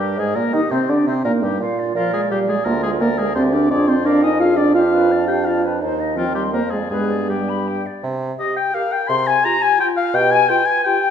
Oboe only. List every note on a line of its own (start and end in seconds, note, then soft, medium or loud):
0.00 0.20 G4 soft
0.19 0.38 G#4 soft
0.36 0.53 A#4 soft
0.54 0.73 D#5 medium
0.71 0.91 C5 medium
0.89 1.07 D5 soft
1.08 1.24 C5 medium
1.24 1.32 A#4 medium
1.42 1.60 G4 soft
1.96 2.12 F4 medium
2.13 2.21 G#4 medium
2.31 2.39 G4 medium
2.49 2.66 G#4 medium
2.65 2.82 A#4 medium
2.83 2.91 G#4 medium
3.00 3.20 A#4 medium
3.18 3.34 G#4 medium
3.35 3.43 C5 medium
3.53 3.70 D5 medium
3.71 3.90 D5 medium
3.88 4.07 C5 medium
4.06 4.23 D5 medium
4.23 4.39 D#5 medium
4.40 4.58 F5 medium
4.57 4.74 D5 medium
4.75 5.27 F5 medium
5.28 5.46 G5 medium
5.45 5.63 F5 medium
6.17 6.34 F4 medium
6.35 6.43 G4 soft
6.53 6.72 A#4 medium
6.71 6.90 G#4 soft
6.90 7.28 G#4 medium
7.29 7.84 G4 soft
8.39 8.56 D#5 medium
8.56 8.76 G5 medium
8.74 8.94 F5 medium
8.92 9.10 G5 medium
9.08 9.28 C6 medium
9.27 9.46 G#5 medium
9.45 9.64 A#5 medium
9.62 9.79 G#5 medium
9.80 9.88 G5 medium
9.97 10.16 F5 medium
10.15 10.33 G5 loud
10.32 10.50 G#5 medium
10.49 10.67 G5 medium
10.66 10.83 G#5 medium
10.84 11.10 G5 medium